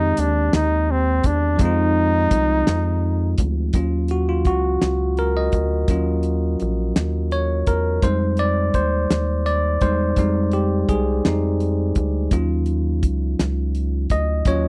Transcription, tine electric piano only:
0.00 1.58 D#3 medium
0.00 1.55 G#3 medium
0.00 1.57 C4 medium
0.00 1.62 G4 medium
1.56 3.68 F3 medium
1.56 3.69 G#3 medium
1.61 3.70 C4 medium
1.61 3.72 D#4 medium
1.65 3.73 F4 medium
3.74 4.77 F#3 soft
3.74 4.78 C#4 soft
3.74 4.28 F4 medium
4.11 4.27 F#4 medium
4.29 4.47 F4 medium
4.47 5.14 F#4 medium
5.19 5.36 A#4 medium
5.37 5.69 D#5 medium
5.89 6.36 F#3 medium
5.89 6.37 C#4 soft
5.89 6.37 F4 medium
7.32 7.65 C#5 loud
7.68 8.04 A#4 loud
8.03 8.50 G3 medium
8.03 8.51 G#3 soft
8.03 8.51 D#4 medium
8.03 8.36 C5 medium
8.39 8.72 D5 loud
8.75 9.48 C5 medium
9.46 9.83 D5 medium
9.82 10.14 G3 soft
9.82 10.14 G#3 soft
9.82 10.14 D#4 medium
9.82 10.55 C5 loud
10.18 10.65 G3 medium
10.18 10.65 G#3 soft
10.18 10.66 D#4 medium
10.53 10.86 G4 medium
10.89 11.05 G#4 medium
11.25 12.99 D#4 medium
12.32 12.79 F#3 soft
12.32 12.80 C#4 soft
12.32 12.80 F4 medium
14.11 14.44 D#5 loud
14.47 14.68 F#3 soft
14.47 14.68 C#4 soft
14.47 14.68 F4 medium
14.47 14.68 C#5 medium

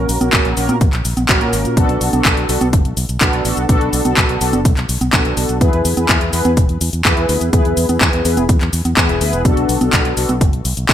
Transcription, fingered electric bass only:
0.09 0.19 A#1 medium
0.21 0.31 A#1 medium
0.33 0.43 A#1 loud
0.45 0.55 A#1 medium
0.57 0.67 A#1 medium
0.69 0.79 A#2 medium
0.81 0.91 A#1 loud
0.93 1.03 A#1 medium
1.05 1.15 A#1 medium
1.17 1.27 A#1 medium
1.29 1.39 A#1 loud
1.41 1.51 A#2 medium
1.53 1.63 G#1 medium
1.65 1.75 A#2 medium
1.77 1.87 B1 loud
1.89 1.99 B1 medium
2.01 2.11 B1 medium
2.13 2.23 B1 medium
2.25 2.35 B1 loud
2.37 2.47 B1 medium
2.49 2.59 B1 medium
2.61 2.71 B1 medium
2.73 2.83 F#1 loud
2.85 2.95 B1 medium
2.97 3.07 B1 medium
3.09 3.19 B1 medium
3.21 3.31 B1 loud
3.33 3.43 B1 medium
3.45 3.55 A1 loud
3.57 3.67 B1 medium
3.69 3.79 B1 loud
3.81 3.91 B1 medium
3.93 4.03 B1 medium
4.05 4.15 B1 medium
4.17 4.27 B1 loud
4.29 4.39 B1 medium
4.41 4.51 B1 medium
4.53 4.63 F#1 medium
4.65 4.75 B1 loud
4.77 4.87 B1 medium
4.89 4.99 B1 medium
5.01 5.11 B1 medium
5.13 5.23 B1 loud
5.25 5.35 B1 medium
5.37 5.47 B1 medium
5.49 5.59 B1 medium
5.61 5.71 E2 loud
5.73 5.83 E2 medium
5.85 5.95 E2 loud
5.97 6.07 E2 medium
6.09 6.19 E2 loud
6.21 6.31 E2 medium
6.33 6.43 E2 medium
6.45 6.55 E2 medium
6.57 6.67 E1 loud
6.69 6.79 E2 medium
6.81 6.91 E2 medium
6.93 7.03 E2 medium
7.05 7.15 E2 loud
7.17 7.27 E2 medium
7.29 7.39 D2 loud
7.41 7.51 E2 medium
7.53 7.63 E2 loud
7.65 7.75 E2 medium
7.77 7.87 E2 medium
7.89 7.99 E2 medium
8.01 8.11 E2 loud
8.13 8.23 E2 medium
8.25 8.35 E2 medium
8.37 8.47 E1 medium
8.49 8.59 E2 loud
8.61 8.71 E2 medium
8.73 8.83 E2 medium
8.85 8.95 E2 medium
8.97 9.07 E2 loud
9.09 9.19 E1 medium
9.21 9.31 D2 medium
9.33 9.43 E1 medium
9.45 9.55 B1 loud
9.57 9.67 B1 medium
9.69 9.79 B1 loud
9.81 9.91 B1 medium
9.93 10.03 B1 loud
10.05 10.15 B1 medium
10.17 10.27 B1 medium
10.29 10.39 B1 medium
10.41 10.51 F#1 loud
10.53 10.63 B1 medium
10.65 10.75 B1 medium
10.77 10.87 B1 medium
10.89 10.94 B1 loud

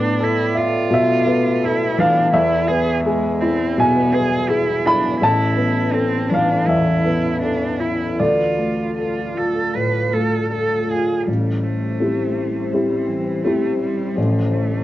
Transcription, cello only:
0.00 0.25 D4 medium
0.23 0.59 E4 medium
0.57 1.66 F4 medium
1.65 2.00 E4 medium
1.99 2.33 D4 medium
2.34 2.69 E4 medium
2.68 3.04 G#4 medium
3.05 3.42 G#3 medium
3.41 3.80 C4 medium
3.78 4.15 B3 medium
4.13 4.51 G#4 medium
4.49 4.88 E4 medium
4.86 5.21 D4 medium
5.22 5.95 E4 medium
5.94 6.31 C4 medium
6.29 6.68 D4 soft
6.67 7.41 E4 medium
7.43 7.81 D4 soft
7.80 8.21 E4 soft
8.19 8.90 F4 soft
8.97 9.39 F4 soft
9.37 9.77 A4 soft
9.75 10.15 B4 medium
10.13 10.51 A4 soft
10.52 10.92 A4 soft
10.90 11.27 G#4 soft
11.27 11.64 G3 soft
11.63 12.74 A3 soft
12.72 13.09 G3 soft
13.07 13.45 E3 soft
13.44 13.78 A3 soft
13.79 14.17 G3 soft
14.15 14.55 F3 soft
14.53 14.84 A3 soft

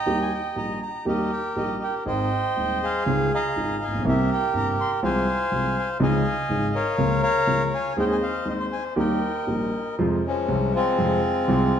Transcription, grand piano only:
0.06 0.28 D#2 medium
0.06 0.28 D#3 medium
0.06 0.28 G3 medium
0.06 0.28 A#3 medium
0.06 0.28 G4 medium
0.55 0.77 A#1 soft
0.55 0.77 A#2 medium
0.55 0.77 D#3 soft
0.55 0.77 G3 soft
0.55 0.77 A#3 soft
0.55 0.77 G4 soft
1.05 1.27 D#2 medium
1.05 1.27 D#3 medium
1.05 1.27 G3 medium
1.05 1.27 A#3 medium
1.05 1.27 G4 medium
1.56 1.78 A#1 soft
1.56 1.77 A#2 medium
1.56 1.77 D#3 soft
1.56 1.77 G3 soft
1.56 1.77 A#3 soft
1.56 1.78 G4 soft
2.06 2.28 G#1 medium
2.06 2.28 G#2 medium
2.06 2.28 D#3 medium
2.06 2.28 G#3 medium
2.06 2.28 C4 medium
2.06 2.28 G#4 medium
2.56 2.78 D#1 soft
2.56 2.78 D#2 soft
2.56 2.78 D#3 soft
2.56 2.78 G#3 soft
2.56 2.78 C4 soft
2.56 2.78 G#4 soft
3.06 3.28 C#2 medium
3.06 3.28 C#3 medium
3.06 3.28 D#3 medium
3.06 3.28 G#3 medium
3.06 3.28 C#4 medium
3.06 3.28 F4 medium
3.56 3.77 G#1 medium
3.56 3.77 G#2 medium
3.56 3.77 D#3 soft
3.56 3.77 G#3 soft
3.56 3.77 C#4 soft
3.56 3.77 F4 medium
3.88 3.93 A1 medium
3.94 4.00 A#1 medium
3.98 4.05 B1 medium
4.05 4.26 C2 medium
4.05 4.26 C3 medium
4.05 4.26 G3 medium
4.05 4.26 A#3 medium
4.05 4.26 E4 medium
4.53 4.75 G1 medium
4.53 4.74 G2 medium
4.53 4.74 C3 soft
4.53 4.74 G3 soft
4.53 4.74 A#3 soft
4.53 4.75 E4 medium
5.03 5.24 C2 medium
5.03 5.24 C3 medium
5.03 5.24 F3 medium
5.03 5.24 G#3 medium
5.03 5.24 F4 medium
5.51 5.73 C2 medium
5.51 5.72 C3 medium
5.51 5.72 F3 soft
5.51 5.73 G#3 soft
5.51 5.73 F4 medium
6.00 6.21 C#2 loud
6.00 6.21 C#3 medium
6.00 6.21 F3 medium
6.00 6.21 G#3 medium
6.00 6.21 D#4 medium
6.49 6.70 G#1 medium
6.49 6.70 G#2 medium
6.49 6.70 C#3 soft
6.49 6.70 F3 soft
6.49 6.70 G#3 soft
6.49 6.70 D#4 soft
6.98 7.19 C#2 medium
6.98 7.19 C#3 medium
6.98 7.19 F3 medium
6.98 7.19 A#3 medium
6.98 7.19 F4 medium
7.47 7.68 C#2 medium
7.47 7.68 C#3 medium
7.47 7.68 F3 soft
7.47 7.68 A#3 soft
7.47 7.68 F4 medium
7.97 8.18 D#2 medium
7.97 8.18 D#3 medium
7.97 8.18 G#3 medium
7.97 8.18 C4 medium
7.97 8.18 G#4 medium
8.45 8.67 D#2 medium
8.45 8.67 D#3 medium
8.45 8.67 G#3 soft
8.45 8.67 C4 soft
8.45 8.67 G#4 medium
8.96 9.18 D#2 medium
8.96 9.18 D#3 loud
8.96 9.18 G3 medium
8.96 9.18 A#3 medium
8.96 9.18 G4 medium
9.47 9.69 A#1 medium
9.47 9.69 A#2 medium
9.47 9.69 D#3 medium
9.47 9.69 G3 soft
9.47 9.69 A#3 soft
9.47 9.69 G4 medium
9.98 10.20 F2 medium
9.98 10.20 C3 medium
9.98 10.20 F3 loud
9.98 10.20 G#3 medium
9.98 10.20 F4 medium
10.48 10.70 C2 medium
10.48 10.70 C3 medium
10.48 10.70 F3 medium
10.48 10.70 G#3 medium
10.48 10.70 F4 medium
10.98 11.20 F2 medium
10.98 11.20 C3 medium
10.98 11.20 F3 medium
10.98 11.20 G#3 medium
10.98 11.20 F4 medium
11.48 11.69 C2 medium
11.48 11.69 C3 loud
11.48 11.69 F3 medium
11.48 11.70 G#3 medium
11.48 11.70 F4 medium

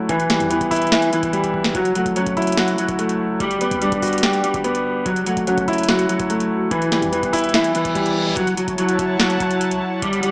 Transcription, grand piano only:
0.00 0.11 F#3 medium
0.00 0.11 A3 medium
0.00 0.12 C#4 medium
0.00 0.11 E4 medium
0.00 0.11 F#4 medium
0.09 1.12 E3 loud
0.30 1.31 G3 medium
0.50 1.54 B3 medium
0.71 1.74 E4 loud
0.92 1.75 E5 medium
1.13 1.75 E3 medium
1.33 1.75 G3 medium
1.75 2.77 F#3 medium
1.96 2.97 A3 medium
2.16 3.20 C#4 medium
2.37 3.40 E4 medium
2.57 3.40 F#4 medium
2.79 3.41 F#3 medium
2.99 3.40 A3 medium
3.41 4.42 G3 medium
3.61 4.63 B3 medium
3.82 4.85 D4 medium
4.02 5.06 F#4 medium
4.23 5.06 G4 medium
4.44 5.06 G3 medium
4.64 5.06 B3 medium
5.06 6.08 F#3 medium
5.27 6.28 A3 medium
5.47 6.51 C#4 medium
5.68 6.71 E4 medium
5.89 6.71 F#4 medium
6.09 6.71 F#3 medium
6.30 6.71 A3 medium
6.71 7.74 E3 loud
6.91 7.93 G3 medium
7.12 8.16 B3 medium
7.33 8.37 E4 loud
7.54 8.37 E5 medium
7.75 8.37 E3 medium
7.95 8.37 G3 medium

